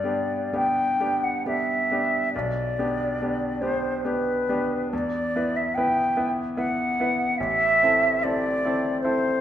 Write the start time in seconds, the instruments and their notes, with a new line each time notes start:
Already playing: grand piano G2, flute D5
0.04 grand piano B3 D4 G4
0.53 grand piano B3 D4 G4, flute G5
1.00 grand piano B3 D4 G4
1.23 flute F#5
1.46 grand piano B3 D4 G4, flute E5
1.91 grand piano B3 D4 G4
2.32 grand piano B1, flute D5
2.79 grand piano B3 D4 G4
3.22 grand piano B3 D4 G4
3.61 grand piano B3 D4 G4, flute C5
4.04 grand piano B3 D4 G4, flute B4
4.49 grand piano B3 D4 G4
4.92 grand piano E2, flute D5
5.35 grand piano B3 E4 B4
5.56 flute E5
5.74 grand piano B3 E4 B4, flute G5
6.17 grand piano B3 E4 B4
6.56 grand piano B3 E4 B4, flute F#5
7.00 grand piano B3 E4 B4
7.38 grand piano A1, flute E5
7.83 grand piano C4 E4 A4
8.23 grand piano C4 E4 A4, flute D5
8.65 grand piano C4 E4 A4
9.01 grand piano C4, flute C5
9.05 grand piano E4 A4